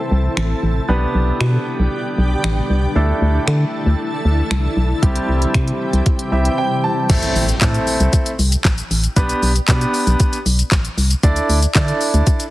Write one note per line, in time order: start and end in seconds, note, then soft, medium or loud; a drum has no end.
0.00 0.85 C3 medium
0.00 0.87 E3 medium
0.00 0.87 A3 medium
0.00 0.85 C4 medium
0.00 0.85 E4 medium
0.00 0.85 A4 medium
0.00 0.87 A4 medium
0.00 0.85 C5 medium
0.11 0.28 C2 medium
0.37 0.54 A1 medium
0.37 finger snap loud
0.63 0.80 A1 medium
0.89 1.06 B1 loud
0.89 2.94 B2 medium
0.89 4.99 D3 medium
0.89 2.94 G3 medium
0.89 2.92 B3 medium
0.89 2.92 D4 medium
0.89 2.94 D4 medium
0.89 2.94 G4 medium
0.89 2.92 G4 medium
0.89 2.92 B4 medium
1.15 1.32 B1 loud
1.41 1.58 B2 loud
1.41 finger snap loud
1.79 1.88 B1 medium
2.18 2.35 B1 medium
2.44 2.61 A1 loud
2.44 finger snap loud
2.70 2.87 C2 medium
2.95 3.13 D2 loud
2.95 5.01 E3 medium
2.95 4.99 A3 medium
2.95 5.01 A3 medium
2.95 4.99 D4 medium
2.95 7.06 E4 medium
2.95 4.99 E4 medium
2.95 5.01 A4 medium
2.95 4.99 A4 medium
3.22 3.39 D2 loud
3.48 3.65 D3 loud
3.48 finger snap loud
3.86 3.95 D2 medium
4.25 4.42 D2 medium
4.51 4.68 C2 medium
4.51 finger snap loud
4.77 4.94 B1 medium
5.02 5.20 C2 loud
5.02 7.08 C3 medium
5.02 7.08 E3 medium
5.02 6.29 G3 medium
5.02 7.08 G3 medium
5.02 6.29 C4 medium
5.02 6.30 E4 medium
5.02 7.08 G4 medium
5.02 6.30 G4 medium
5.02 kick loud
5.02 closed hi-hat medium
5.16 closed hi-hat medium
5.29 5.46 C2 loud
5.42 closed hi-hat medium
5.54 5.72 C3 loud
5.54 finger snap loud
5.54 kick loud
5.54 closed hi-hat medium
5.68 closed hi-hat soft
5.93 6.02 C2 medium
5.93 closed hi-hat soft
6.06 kick loud
6.06 closed hi-hat medium
6.19 closed hi-hat medium
6.32 6.49 C2 medium
6.32 7.10 G3 medium
6.32 7.08 C4 medium
6.32 7.08 E4 medium
6.32 7.10 G4 medium
6.32 6.56 E5 medium
6.45 closed hi-hat medium
6.58 6.82 G5 medium
6.84 7.08 A5 medium
7.09 7.27 A1 loud
7.09 7.43 A3 medium
7.09 7.43 C4 medium
7.09 7.44 E4 medium
7.09 7.44 A4 medium
7.09 kick loud
7.09 closed hi-hat medium
7.09 crash medium
7.09 impact medium
7.09 shaker medium
7.22 closed hi-hat medium
7.22 shaker medium
7.36 7.53 A1 loud
7.36 open hi-hat medium
7.36 shaker soft
7.49 closed hi-hat medium
7.49 shaker medium
7.61 7.79 A2 loud
7.61 8.29 A3 medium
7.61 8.29 C4 medium
7.61 8.29 E4 medium
7.61 8.29 A4 medium
7.61 kick loud
7.61 snare medium
7.61 clap loud
7.61 closed hi-hat medium
7.61 shaker medium
7.74 closed hi-hat medium
7.74 shaker soft
7.87 open hi-hat medium
7.87 shaker soft
8.00 8.09 C2 medium
8.00 closed hi-hat soft
8.00 shaker medium
8.13 kick loud
8.13 closed hi-hat medium
8.13 shaker medium
8.26 closed hi-hat medium
8.26 shaker medium
8.39 8.56 C2 medium
8.39 open hi-hat medium
8.39 shaker medium
8.52 closed hi-hat medium
8.52 shaker medium
8.65 8.82 A1 medium
8.65 kick loud
8.65 snare medium
8.65 clap loud
8.65 closed hi-hat medium
8.65 shaker medium
8.78 closed hi-hat medium
8.78 shaker medium
8.91 9.08 A1 medium
8.91 open hi-hat medium
8.91 shaker medium
9.04 closed hi-hat medium
9.04 shaker medium
9.16 9.34 B1 loud
9.16 9.50 B3 medium
9.16 9.50 D4 medium
9.16 9.50 G4 medium
9.16 9.51 B4 loud
9.16 kick loud
9.16 closed hi-hat medium
9.16 shaker medium
9.29 closed hi-hat medium
9.29 shaker medium
9.42 9.60 B1 loud
9.42 open hi-hat medium
9.42 shaker medium
9.56 closed hi-hat medium
9.56 shaker medium
9.68 9.86 B2 loud
9.68 10.36 B3 medium
9.68 10.36 D4 medium
9.68 10.36 G4 medium
9.68 10.36 B4 loud
9.68 kick loud
9.68 snare medium
9.68 clap loud
9.68 closed hi-hat medium
9.68 shaker medium
9.81 closed hi-hat medium
9.81 shaker medium
9.94 open hi-hat medium
9.94 shaker soft
10.07 10.16 B1 medium
10.07 closed hi-hat soft
10.07 shaker medium
10.20 kick loud
10.20 closed hi-hat medium
10.20 shaker medium
10.33 closed hi-hat medium
10.33 shaker medium
10.46 10.63 B1 medium
10.46 open hi-hat medium
10.46 shaker medium
10.59 closed hi-hat medium
10.59 shaker medium
10.72 10.89 A1 medium
10.72 kick loud
10.72 snare medium
10.72 clap loud
10.72 closed hi-hat medium
10.72 shaker medium
10.85 closed hi-hat medium
10.85 shaker soft
10.98 11.15 C2 medium
10.98 open hi-hat medium
10.98 shaker medium
11.10 closed hi-hat medium
11.10 shaker medium
11.23 11.41 D2 loud
11.23 11.57 D4 medium
11.23 11.57 E4 medium
11.23 11.57 A4 medium
11.23 11.57 D5 medium
11.23 kick loud
11.23 closed hi-hat medium
11.23 shaker medium
11.36 closed hi-hat medium
11.36 shaker medium
11.49 11.66 D2 loud
11.49 open hi-hat medium
11.49 shaker medium
11.62 closed hi-hat medium
11.62 shaker medium
11.75 11.92 D3 loud
11.75 12.43 D4 medium
11.75 12.43 E4 medium
11.75 12.43 A4 medium
11.75 12.43 D5 loud
11.75 kick loud
11.75 snare medium
11.75 clap loud
11.75 closed hi-hat medium
11.75 shaker medium
11.88 closed hi-hat soft
11.88 shaker medium
12.01 open hi-hat medium
12.01 shaker medium
12.14 12.22 D2 medium
12.14 closed hi-hat soft
12.14 shaker medium
12.27 kick loud
12.27 closed hi-hat medium
12.27 shaker medium
12.40 closed hi-hat medium
12.40 shaker medium